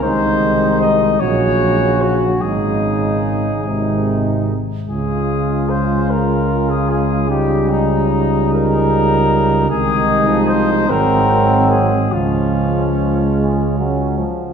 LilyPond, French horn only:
\new Staff \with { instrumentName = "French horn" } { \clef bass \time 6/8 \key des \major \tempo 4. = 50 aes4. ges4. | aes4. aes4 r8 | aes2. | g2. |
aes4. aes4. | aes2~ aes8 r8 | }